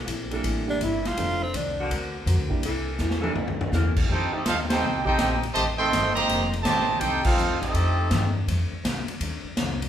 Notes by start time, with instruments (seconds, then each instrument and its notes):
0.07 upright bass A#1, steel-string acoustic guitar C3 A#3 E4 A4, kick, hi-hat pedal, ride
0.31 saxophone section E3 A#3 D4 A4, grand piano G3 A#3 D4 E4 A4, ride
0.44 upright bass A1, steel-string acoustic guitar C3 A#3 E4 A4, kick, ride
0.66 grand piano G3 A#3 D4 E4 G4, tenor saxophone D4
0.81 upright bass G1, steel-string acoustic guitar C3 A#3 E4 A4, tenor saxophone E4, kick, hi-hat pedal, ride
1.05 tenor saxophone F4, snare, ride
1.16 upright bass F1, steel-string acoustic guitar F2 D#3 A3 D4, grand piano G3 C4 D4 D#4 A4, kick, ride
1.43 tenor saxophone C4
1.53 upright bass C2, steel-string acoustic guitar F2 D#3 A3 D4, tenor saxophone D4, kick, hi-hat pedal, ride
1.80 saxophone section D3 A#3 C4 F#4
1.89 upright bass D2, steel-string acoustic guitar D3 C4 F#4 A#4, kick, ride
2.25 upright bass F2, steel-string acoustic guitar D3 C4 F#4 A#4, kick, hi-hat pedal, ride
2.38 upright bass D2
2.48 upright bass C2, grand piano G3 A#3 D4 E4 G4, kick
2.63 upright bass C2, steel-string acoustic guitar C3 A#3 E4 A4, saxophone section E3 A#3 D4 A4, kick, ride
2.99 upright bass E2, steel-string acoustic guitar C3 A#3 E4 A4, snare, hi-hat pedal
3.11 snare
3.20 saxophone section E3 A#3 D4 A4, grand piano G3 A#3 D4 E4
3.24 grand piano A4, high tom
3.35 upright bass D2, steel-string acoustic guitar C3 A#3 E4 A4, floor tom
3.48 floor tom
3.61 floor tom
3.72 upright bass E2, steel-string acoustic guitar C3 A#3 E4 A4, saxophone section E3 A#3 D4 A#4, snare, hi-hat pedal
3.97 kick, crash
4.08 steel-string acoustic guitar F2 D#3 A3 D4, upright bass F2, trombone section C4 D#4 G4, trumpet section A4 G5, kick
4.12 trumpet section D#4 C5
4.32 trombone section A3 C4 D#4, trumpet section C4 G4 A4 D#5, muted upright bass stroke
4.45 upright bass D#2, steel-string acoustic guitar F2 D#3 A3 D4, trombone section A3 C4 F4, trumpet section D#4 A4 C5 F5, kick, snare, hi-hat pedal, ride
4.69 trombone section C4 D#4 G4, trumpet section D#4 A4 C5 G5, snare, ride
4.81 upright bass C2, steel-string acoustic guitar F2 D#3 A3 D4
5.04 trombone section C4 D#4 G4, trumpet section D#4 A4 C5 G5, kick
5.18 upright bass A#1, steel-string acoustic guitar F2 D#3 A3 D4, snare, hi-hat pedal, ride
5.43 ride
5.53 upright bass A1, steel-string acoustic guitar F2 D#3 A3, trombone section C3 D#3 A3, trumpet section G4 C5 D#5 A5, kick, ride
5.58 steel-string acoustic guitar D4
5.77 trombone section D#3 A3 C4, trumpet section A4 D#5 G5 C6
5.91 upright bass G1, steel-string acoustic guitar F2 D#3 A3 D4, kick, snare, hi-hat pedal, ride
6.14 trombone section C3 D#3 A#3, trumpet section G4 C5 D#5 A#5, ride
6.27 upright bass F1, steel-string acoustic guitar F2 D#3 A3 D4, kick, ride
6.53 ride
6.63 upright bass A1, steel-string acoustic guitar F2 D#3 A3, trombone section C3 D#3 A3, trumpet section G4 C5 D#5 A5, kick, snare, hi-hat pedal, ride
6.67 steel-string acoustic guitar D4
7.00 upright bass C2, steel-string acoustic guitar F2 D#3 A3 D4, trombone section C4 D#4 G4, trumpet section D#4 A4 C5 G5, kick, ride
7.24 trombone section A3 C4 F4, trumpet section D#4 A4 C5 F5, kick, crash
7.37 upright bass D#2, steel-string acoustic guitar F2 D#3 A3 D4, hi-hat pedal
7.49 upright bass C2
7.60 upright bass A1, trombone section A3 C4 D#4, trumpet section C4 G4 A4 D#5, ride
7.74 upright bass F2, steel-string acoustic guitar F2 D#3 A3 D4, kick, ride
8.10 steel-string acoustic guitar F2 D#3 A3 D4, upright bass G2, kick, snare, hi-hat pedal, ride
8.47 upright bass F2, steel-string acoustic guitar F2 D#3 A3 D4, kick, ride
8.71 muted upright bass stroke
8.83 upright bass C2, steel-string acoustic guitar F2 D#3 A3 D4, kick, snare, hi-hat pedal, ride
9.08 ride
9.20 upright bass D#2, steel-string acoustic guitar F2 D#3 A3 D4, kick, ride
9.44 muted upright bass stroke
9.56 upright bass C2, steel-string acoustic guitar F2 D#3 A3 D4, kick, snare, hi-hat pedal, ride
9.82 ride